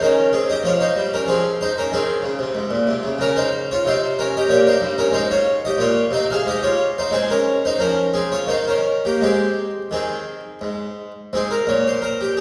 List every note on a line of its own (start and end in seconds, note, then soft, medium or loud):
0.01 0.46 D#3 soft
0.01 0.31 C#4 soft
0.01 0.32 A#4 medium
0.33 0.48 C4 soft
0.33 0.48 G#4 medium
0.50 0.64 G4 soft
0.50 0.64 D#5 medium
0.63 0.86 F3 soft
0.63 0.80 F4 soft
0.63 0.80 C#5 medium
0.80 1.10 D#4 soft
0.80 1.12 C5 medium
0.96 1.19 G3 soft
1.14 1.28 C#4 soft
1.14 1.29 A#4 medium
1.26 1.73 F3 soft
1.26 1.58 C4 soft
1.26 1.55 G#4 medium
1.61 1.76 D#4 soft
1.61 1.76 C5 medium
1.78 1.92 C#4 soft
1.78 1.93 A#4 medium
1.92 2.14 D#3 soft
1.92 3.17 C4 soft
1.92 3.21 G#4 medium
2.22 2.38 C#3 soft
2.39 2.54 C3 soft
2.55 2.70 G#2 soft
2.71 2.86 A#2 soft
2.87 3.03 C3 soft
3.03 3.17 C#3 soft
3.19 3.66 C#3 medium
3.19 3.36 C#4 medium
3.19 3.37 A#4 medium
3.36 3.67 D#4 soft
3.36 3.69 C5 medium
3.71 3.86 F4 medium
3.71 3.86 C#5 medium
3.86 4.31 C3 medium
3.86 4.16 D#4 medium
3.86 4.18 C5 medium
4.19 4.33 C#4 medium
4.19 4.34 A#4 medium
4.37 4.50 G4 medium
4.37 4.51 D#5 medium
4.49 4.72 A#2 soft
4.49 4.65 G4 medium
4.49 4.65 C#5 medium
4.67 4.97 D#4 medium
4.67 4.94 C5 medium
4.81 5.04 G2 soft
4.98 5.14 C#4 medium
4.98 5.14 A#4 medium
5.12 5.60 G#2 medium
5.12 5.30 D#4 medium
5.12 5.30 C5 medium
5.31 5.61 F4 medium
5.31 5.63 C#5 medium
5.65 5.80 G4 medium
5.65 5.81 D#5 medium
5.78 6.03 A#2 soft
5.78 6.11 F4 medium
5.78 6.08 C#5 medium
6.11 6.36 C3 medium
6.11 6.29 D#4 medium
6.11 6.30 C5 medium
6.31 6.47 G#4 medium
6.31 6.47 F5 medium
6.46 6.95 G#2 medium
6.46 6.64 G4 medium
6.46 6.64 D#5 medium
6.63 6.95 F4 medium
6.63 6.92 C#5 medium
6.98 7.14 D#4 medium
6.98 7.14 C5 medium
7.11 7.60 G#3 medium
7.11 7.29 C4 medium
7.11 7.30 G#4 medium
7.30 7.62 C#4 medium
7.30 7.64 A#4 medium
7.65 7.81 D#4 medium
7.65 7.81 C5 medium
7.79 8.29 F3 soft
7.79 8.13 C#4 medium
7.79 8.14 A#4 medium
8.14 8.31 C4 medium
8.14 8.31 G#4 medium
8.32 8.49 F4 medium
8.32 8.49 C#5 medium
8.47 8.99 D#3 soft
8.47 8.66 D#4 medium
8.47 8.67 C5 medium
8.68 9.01 C#4 soft
8.68 9.03 A#4 medium
9.05 9.22 A#3 soft
9.05 9.21 G4 medium
9.21 9.71 G#3 soft
9.21 9.89 C4 medium
9.21 9.82 G4 medium
9.91 10.40 D#3 soft
9.91 10.59 C4 soft
9.91 10.62 G#4 soft
10.61 11.11 G#2 soft
11.33 11.58 G#2 soft
11.33 12.41 C4 soft
11.33 11.51 G#4 medium
11.51 11.68 A#4 medium
11.67 12.41 A#2 soft
11.67 11.85 C#5 medium
11.87 12.03 C5 medium
12.02 12.19 A#4 medium
12.21 12.36 G4 medium
12.37 12.41 G#4 medium